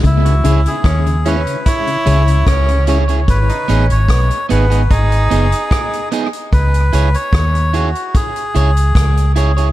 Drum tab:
HH |xxxxxxxxxxxxxxxx|xxxxxxxxxxxxxxxx|xxxxxxxxxxxxxxxx|
SD |----r-------r---|----r-------r---|----r-------r---|
BD |o---o---o---o---|o---o---o---o---|o---o---o---o---|